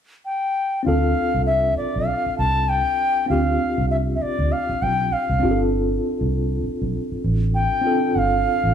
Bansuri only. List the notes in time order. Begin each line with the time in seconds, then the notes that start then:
0.25 G5
0.86 F5
1.46 E5
1.77 D5
2.07 F5
2.38 A5
2.69 G5
3.29 F5
3.91 E5
4.15 E5
4.22 D5
4.52 F5
4.82 G5
5.13 F5
7.54 G5
8.15 F5 F#5